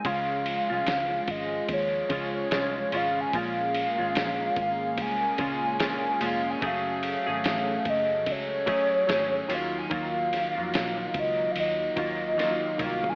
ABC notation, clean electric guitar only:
X:1
M:4/4
L:1/16
Q:"Swing 16ths" 1/4=73
K:Db
V:1 name="Clean electric guitar"
[D,A,DF]3 [A,DF]6- [A,DF] [D,A,DF]2 [A,DF]2 [D,A,DF]2 | [B,,A,DF]3 [A,DF]6- [A,DF] [B,,A,DF]2 [B,,A,DF]2 [B,,A,DF]2 | [G,=A,D_A]3 [=A,D_A]6- [=A,D_A] [G,=A,D_A]2 [G,=A,D_A]2 [E,G,B,F]2 | [E,G,B,F]3 [G,B,F]6- [G,B,F] [E,G,B,F]2 [E,G,B,F]2 [E,G,B,F]2 |]